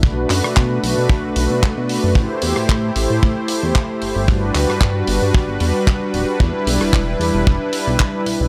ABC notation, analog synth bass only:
X:1
M:4/4
L:1/16
Q:"Swing 16ths" 1/4=113
K:Em
V:1 name="Analog synth bass" clef=bass
B,,,2 F,, B,, B,,2 B,,, B,, z B,,, B,,, B,,, A,, B,,2 F,, | A,,, z E,, z A,,2 A,,, A,, A,, z2 E,, z2 G,,, G,,,- | G,,,2 D,, z G,,2 G,,, G,, z G,,, E,, z3 D,,, z | E,, z B,,, z E,,,2 E,, E,,, E,,, z2 B,,, z2 B,,, B,,, |]